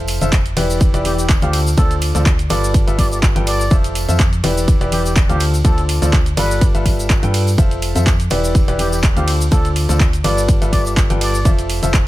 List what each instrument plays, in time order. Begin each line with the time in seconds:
Already playing: fm bass F1, grand piano F3 F4 A4 C5 E5
0.08 open hi-hat, ride, tambourine
0.21 fm bass F1, grand piano F3 F4 A4 C5 E5, closed hi-hat, tambourine, high conga, shaker
0.32 kick, clap, closed hi-hat, shaker
0.46 closed hi-hat, shaker
0.57 fm bass E1, grand piano E3 E4 G4 B4 D5, open hi-hat, ride, tambourine, high conga
0.70 tambourine, shaker
0.80 kick, closed hi-hat, tambourine, shaker
0.94 fm bass E1, grand piano E3 E4 G4 B4 D5, closed hi-hat, shaker
1.05 muted trumpet G4, open hi-hat, ride, tambourine, high conga
1.18 muted trumpet G4, tambourine, shaker
1.29 kick, clap, closed hi-hat, tambourine, shaker
1.42 fm bass D2, grand piano D3 F4 A4 C5 F5, muted trumpet G4, closed hi-hat, high conga, shaker
1.53 open hi-hat, ride, tambourine
1.66 tambourine, shaker
1.77 fm bass D2, grand piano D3 F4 A4 C5 D5, muted trumpet A4, kick, closed hi-hat, tambourine, high conga, shaker
1.91 closed hi-hat, shaker
2.02 open hi-hat, ride, tambourine
2.15 fm bass D2, grand piano D3 F4 A4 C5 D5, closed hi-hat, tambourine, high conga, shaker
2.26 kick, clap, closed hi-hat, tambourine, shaker
2.39 closed hi-hat, shaker
2.50 fm bass G1, grand piano G3 F4 A4 B4 D5, muted trumpet D5, open hi-hat, ride, tambourine, high conga
2.64 tambourine, shaker
2.74 kick, closed hi-hat, tambourine, shaker
2.87 fm bass G1, grand piano G3 F4 A4 B4 E5, closed hi-hat, shaker
2.98 muted trumpet D5, kick, open hi-hat, ride, tambourine, high conga
3.11 muted trumpet D5, tambourine, shaker
3.22 kick, clap, closed hi-hat, tambourine, shaker
3.36 fm bass G1, grand piano G3 F4 A4 B4 G5, closed hi-hat, high conga, shaker
3.47 muted trumpet D5, open hi-hat, ride, tambourine
3.60 tambourine, shaker
3.70 fm bass F1, grand piano F3 F4 A4 C5 E5, kick, closed hi-hat, tambourine, high conga, shaker
3.84 closed hi-hat, shaker
3.95 open hi-hat, ride, tambourine
4.08 fm bass F2, grand piano F3 F4 A4 C5 E5, closed hi-hat, tambourine, high conga, shaker
4.19 kick, clap, closed hi-hat, shaker
4.33 closed hi-hat, shaker
4.44 fm bass E1, grand piano E3 E4 G4 B4 D5, open hi-hat, ride, tambourine, high conga
4.57 tambourine, shaker
4.68 kick, closed hi-hat, tambourine, shaker
4.81 fm bass E1, grand piano E3 E4 G4 B4 D5, closed hi-hat, shaker
4.92 muted trumpet G4, open hi-hat, ride, tambourine, high conga
5.05 muted trumpet G4, tambourine, shaker
5.16 kick, clap, closed hi-hat, tambourine, shaker
5.29 fm bass D2, grand piano D3 F4 A4 C5 F5, muted trumpet G4, closed hi-hat, high conga, shaker
5.40 open hi-hat, ride, tambourine
5.54 tambourine, shaker
5.64 fm bass D2, grand piano D3 F4 A4 C5 D5, muted trumpet A4, kick, closed hi-hat, tambourine, high conga, shaker
5.78 closed hi-hat, shaker
5.89 open hi-hat, ride, tambourine
6.02 fm bass D2, grand piano D3 F4 A4 C5 D5, closed hi-hat, tambourine, high conga, shaker
6.13 kick, clap, closed hi-hat, shaker
6.26 closed hi-hat, shaker
6.37 fm bass G1, grand piano G3 F4 A4 B4 D5, muted trumpet B4, open hi-hat, ride, tambourine, high conga
6.51 tambourine, shaker
6.61 kick, closed hi-hat, tambourine, shaker
6.75 fm bass G1, grand piano G3 F4 A4 B4 E5, closed hi-hat, shaker
6.86 kick, open hi-hat, ride, tambourine, high conga
7.00 tambourine, shaker
7.10 kick, clap, closed hi-hat, tambourine, shaker
7.23 fm bass G2, grand piano G3 F4 A4 B4 G5, closed hi-hat, high conga, shaker
7.34 open hi-hat, ride, tambourine
7.47 tambourine, shaker
7.57 fm bass F1, grand piano F3 F4 A4 C5 E5, kick, closed hi-hat, tambourine, high conga, shaker
7.71 closed hi-hat, shaker
7.82 open hi-hat, ride, tambourine
7.95 fm bass F2, grand piano F3 F4 A4 C5 E5, closed hi-hat, tambourine, high conga, shaker
8.07 kick, clap, closed hi-hat, tambourine, shaker
8.20 closed hi-hat, shaker
8.30 fm bass E1, grand piano E3 E4 G4 B4 D5, open hi-hat, ride, tambourine, high conga
8.44 tambourine, shaker
8.55 kick, closed hi-hat, tambourine, shaker
8.68 fm bass E1, grand piano E3 E4 G4 B4 D5, closed hi-hat, shaker
8.79 muted trumpet G4, open hi-hat, ride, tambourine, high conga
8.92 muted trumpet G4, tambourine, shaker
9.03 kick, clap, closed hi-hat, shaker
9.16 fm bass D2, grand piano D3 F4 A4 C5 F5, muted trumpet G4, closed hi-hat, high conga, shaker
9.27 open hi-hat, ride, tambourine
9.40 tambourine, shaker
9.51 fm bass D2, grand piano D3 F4 A4 C5 D5, muted trumpet A4, kick, closed hi-hat, tambourine, high conga, shaker
9.65 closed hi-hat, shaker
9.76 open hi-hat, ride, tambourine
9.89 fm bass D2, grand piano D3 F4 A4 C5 D5, closed hi-hat, tambourine, high conga, shaker
10.00 kick, clap, closed hi-hat, shaker
10.13 closed hi-hat, shaker
10.24 fm bass G1, grand piano G3 F4 A4 B4 D5, muted trumpet D5, open hi-hat, ride, tambourine, high conga
10.37 tambourine, shaker
10.48 kick, closed hi-hat, tambourine, shaker
10.62 fm bass G1, grand piano G3 F4 A4 B4 E5, closed hi-hat, shaker
10.72 muted trumpet D5, kick, open hi-hat, ride, tambourine, high conga
10.85 muted trumpet D5, tambourine, shaker
10.97 kick, clap, closed hi-hat, tambourine, shaker
11.10 fm bass G1, grand piano G3 F4 A4 B4 G5, closed hi-hat, high conga, shaker
11.21 muted trumpet D5, open hi-hat, ride, tambourine
11.34 tambourine, shaker
11.45 fm bass F1, grand piano F3 F4 A4 C5 E5, kick, closed hi-hat, tambourine, high conga, shaker
11.59 closed hi-hat, shaker
11.70 open hi-hat, ride, tambourine
11.82 fm bass F1, grand piano F3 F4 A4 C5 E5, closed hi-hat, tambourine, high conga, shaker
11.94 kick, clap, closed hi-hat, tambourine, shaker